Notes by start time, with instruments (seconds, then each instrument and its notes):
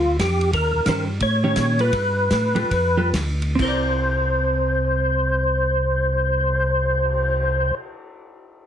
Already playing: tonewheel organ D2 F4
0.19 tonewheel organ F2 G4, kick, snare, hi-hat pedal, ride
0.41 ride
0.53 tonewheel organ D#2 A#4, kick, ride
0.74 tonewheel organ D#2
0.86 tonewheel organ G2, hollow-body jazz guitar D#3 C#4 G4 C5, kick, snare, hi-hat pedal, ride
1.20 tonewheel organ A2 C#5, kick, ride
1.44 hollow-body jazz guitar D#3 C#4 G4, tonewheel organ C#5
1.56 tonewheel organ A#2, kick, snare, hi-hat pedal, ride
1.79 hollow-body jazz guitar G3 F4 A4 B4, tonewheel organ B4, ride
1.92 tonewheel organ G2, kick, ride
2.31 tonewheel organ A2, kick, snare, hi-hat pedal, ride
2.55 tonewheel organ A2, hollow-body jazz guitar G3 F4 A4 B4, ride
2.71 tonewheel organ F2, kick, ride
2.97 hollow-body jazz guitar G3 F4 A4 B4
3.13 tonewheel organ D2, kick, snare, hi-hat pedal, ride
3.42 ride
3.55 tonewheel organ C2, hollow-body jazz guitar C4, kick, crash
3.60 hollow-body jazz guitar E4, tonewheel organ C5
3.64 hollow-body jazz guitar A#4 D5
3.90 cymbal swell